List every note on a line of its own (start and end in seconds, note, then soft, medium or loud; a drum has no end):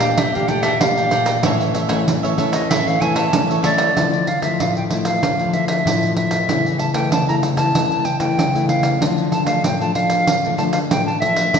0.00 0.15 A#2 medium
0.00 0.28 A3 medium
0.00 0.29 D4 medium
0.00 0.29 G4 medium
0.00 0.16 D5 soft
0.00 0.20 F5 medium
0.00 0.16 G5 soft
0.00 0.15 A#5 soft
0.00 pandeiro medium
0.18 0.78 A#2 medium
0.18 0.48 D5 medium
0.18 0.37 E5 medium
0.18 0.48 G5 medium
0.18 0.48 A#5 medium
0.18 pandeiro medium
0.35 0.46 A3 medium
0.35 0.46 D4 medium
0.35 0.46 G4 medium
0.35 0.50 F5 medium
0.35 pandeiro soft
0.48 0.68 A3 medium
0.48 0.68 D4 medium
0.48 0.68 G4 medium
0.48 0.62 A4 medium
0.48 0.62 D5 medium
0.48 0.64 G5 loud
0.48 0.62 G5 medium
0.48 0.62 A#5 medium
0.48 pandeiro medium
0.63 0.73 A4 medium
0.63 0.73 D5 medium
0.63 0.82 E5 medium
0.63 0.73 G5 medium
0.63 0.74 A#5 medium
0.63 pandeiro medium
0.80 1.41 A#2 medium
0.80 1.39 A3 medium
0.80 1.39 D4 medium
0.80 1.40 G4 medium
0.80 1.44 F5 medium
0.80 pandeiro medium
0.97 1.10 D5 soft
0.97 1.11 G5 soft
0.97 1.11 A#5 soft
0.97 pandeiro soft
1.11 1.26 A4 medium
1.11 1.26 D5 medium
1.11 1.25 G5 medium
1.11 1.24 A#5 medium
1.11 pandeiro medium
1.25 1.42 D5 soft
1.25 1.42 G5 soft
1.25 1.41 A#5 medium
1.25 pandeiro medium
1.43 2.04 A2 medium
1.43 1.86 E3 medium
1.43 1.86 A3 medium
1.43 1.87 C#4 medium
1.43 1.73 E4 medium
1.43 1.73 A4 medium
1.43 1.74 C#5 medium
1.43 1.74 E5 medium
1.43 pandeiro medium
1.60 pandeiro soft
1.74 1.87 E4 soft
1.74 1.88 A4 soft
1.74 1.88 C#5 medium
1.74 1.88 E5 medium
1.74 pandeiro medium
1.89 2.06 E3 medium
1.89 2.17 A3 medium
1.89 2.17 C#4 medium
1.89 1.99 E4 medium
1.89 1.99 A4 medium
1.89 1.99 C#5 medium
1.89 1.99 E5 medium
1.89 pandeiro medium
2.07 2.22 E3 medium
2.07 pandeiro medium
2.23 2.34 E3 medium
2.23 2.34 A3 medium
2.23 2.34 C#4 medium
2.23 2.37 A4 medium
2.23 2.37 C#5 medium
2.23 2.37 E5 medium
2.23 pandeiro soft
2.37 2.80 E3 medium
2.37 2.81 A3 medium
2.37 2.81 C#4 medium
2.37 2.53 E4 soft
2.37 2.53 A4 medium
2.37 2.52 C#5 medium
2.37 2.51 E5 medium
2.37 pandeiro medium
2.51 2.69 A4 soft
2.51 2.68 C#5 soft
2.51 2.71 D#5 medium
2.51 2.68 E5 soft
2.51 pandeiro medium
2.70 3.30 A2 medium
2.70 2.99 E4 medium
2.70 3.00 A4 medium
2.70 3.01 C#5 medium
2.70 2.89 E5 medium
2.70 3.01 E5 medium
2.70 pandeiro medium
2.87 2.97 E3 medium
2.87 2.97 A3 medium
2.87 2.98 C#4 medium
2.87 3.02 F5 medium
2.87 pandeiro soft
3.00 3.28 E3 medium
3.00 3.28 A3 medium
3.00 3.29 C#4 medium
3.00 3.14 E4 medium
3.00 3.14 A4 medium
3.00 3.14 C#5 medium
3.00 3.15 E5 medium
3.00 3.17 G#5 medium
3.00 pandeiro medium
3.15 3.25 E4 medium
3.15 3.25 A4 medium
3.15 3.25 C#5 medium
3.15 3.26 E5 medium
3.15 3.64 A5 medium
3.15 pandeiro medium
3.33 3.64 E3 medium
3.33 3.60 A3 medium
3.33 3.60 C#4 medium
3.33 pandeiro medium
3.50 3.62 A4 soft
3.50 3.62 C#5 soft
3.50 3.63 E5 soft
3.50 pandeiro soft
3.63 3.91 E3 medium
3.63 3.92 A3 medium
3.63 3.92 C#4 medium
3.63 3.78 E4 medium
3.63 3.78 A4 medium
3.63 3.78 C#5 medium
3.63 4.29 D5 medium
3.63 3.76 E5 medium
3.63 pandeiro medium
3.78 3.94 A4 soft
3.78 3.94 C#5 soft
3.78 3.93 E5 soft
3.78 pandeiro medium
3.97 4.57 D3 medium
3.97 4.27 F3 medium
3.97 4.27 A3 medium
3.97 4.27 E4 medium
3.97 pandeiro medium
4.14 pandeiro soft
4.27 4.42 F5 medium
4.27 pandeiro medium
4.42 4.85 F3 medium
4.42 4.85 A3 medium
4.42 4.86 E4 medium
4.42 4.62 E5 medium
4.42 pandeiro medium
4.60 5.20 A2 medium
4.60 4.75 F5 medium
4.60 pandeiro medium
4.77 4.84 G5 medium
4.77 pandeiro soft
4.90 5.21 F3 medium
4.90 5.21 A3 medium
4.90 5.21 E4 medium
4.90 pandeiro medium
5.05 5.55 F5 medium
5.05 pandeiro medium
5.23 5.83 D3 medium
5.23 pandeiro medium
5.39 5.81 F3 medium
5.39 5.81 A3 medium
5.39 5.82 E4 medium
5.39 pandeiro soft
5.53 5.68 E5 medium
5.53 pandeiro soft
5.68 6.13 E5 medium
5.68 pandeiro medium
5.86 6.46 A2 medium
5.86 6.44 F3 medium
5.86 6.44 A3 soft
5.86 6.44 E4 medium
5.86 pandeiro medium
6.03 pandeiro soft
6.17 6.81 E5 medium
6.17 pandeiro medium
6.31 pandeiro medium
6.48 7.09 C#3 medium
6.48 6.91 E3 medium
6.48 6.91 A3 medium
6.48 6.91 E4 medium
6.48 pandeiro medium
6.66 pandeiro soft
6.79 6.93 A5 medium
6.79 pandeiro medium
6.94 7.22 E3 medium
6.94 7.22 A3 medium
6.94 7.22 E4 medium
6.94 7.10 G5 medium
6.94 pandeiro medium
7.12 7.72 C#3 medium
7.12 7.27 A5 medium
7.12 pandeiro medium
7.28 7.55 E3 medium
7.28 7.55 A3 medium
7.28 7.55 E4 medium
7.28 7.35 A#5 medium
7.28 pandeiro soft
7.43 pandeiro medium
7.57 7.69 E3 medium
7.57 7.69 A3 medium
7.57 7.69 E4 medium
7.57 8.07 A5 medium
7.57 pandeiro medium
7.75 8.35 C#3 medium
7.75 8.05 E3 medium
7.75 8.05 A3 medium
7.75 8.05 E4 medium
7.75 pandeiro medium
7.92 pandeiro soft
8.05 8.20 G5 medium
8.05 pandeiro soft
8.20 8.48 E3 medium
8.20 8.48 A3 medium
8.20 8.48 E4 medium
8.20 8.65 G5 medium
8.20 pandeiro medium
8.38 8.98 C#3 medium
8.38 pandeiro medium
8.55 8.97 E3 medium
8.55 8.97 A3 medium
8.55 8.97 E4 medium
8.55 pandeiro soft
8.68 9.03 F5 medium
8.68 pandeiro medium
8.83 pandeiro medium
9.01 9.61 D3 medium
9.01 9.43 F3 medium
9.01 9.44 A3 medium
9.01 9.44 D4 medium
9.01 pandeiro medium
9.18 pandeiro soft
9.32 9.46 A5 medium
9.32 pandeiro medium
9.46 9.74 F3 medium
9.46 9.74 A3 medium
9.46 9.74 D4 medium
9.46 9.66 F5 medium
9.46 pandeiro medium
9.64 10.25 A2 medium
9.64 9.80 G5 medium
9.64 pandeiro medium
9.81 9.92 F3 medium
9.81 9.92 A3 medium
9.81 9.92 D4 medium
9.81 9.94 A5 medium
9.81 pandeiro soft
9.95 10.38 F3 medium
9.95 10.38 A3 medium
9.95 10.38 D4 medium
9.95 10.55 F5 medium
9.95 pandeiro medium
10.10 pandeiro medium
10.27 10.88 D3 medium
10.27 pandeiro medium
10.44 10.55 F3 medium
10.44 10.55 A3 medium
10.44 10.56 D4 medium
10.44 pandeiro soft
10.58 10.77 F3 medium
10.58 10.77 A3 medium
10.58 10.78 D4 medium
10.58 10.64 A5 medium
10.58 pandeiro medium
10.73 10.79 F5 medium
10.73 pandeiro medium
10.90 11.51 A2 medium
10.90 11.09 F3 medium
10.90 11.10 A3 medium
10.90 11.10 D4 medium
10.90 11.05 G5 medium
10.90 pandeiro medium
11.06 11.19 A5 medium
11.06 pandeiro soft
11.20 11.49 F3 soft
11.20 11.49 A3 medium
11.20 11.49 D4 medium
11.20 11.60 E5 medium
11.20 pandeiro medium
11.36 pandeiro medium
11.54 11.60 A2 medium
11.54 11.60 A3 medium
11.54 11.60 C#4 medium
11.54 11.60 E4 medium
11.54 pandeiro medium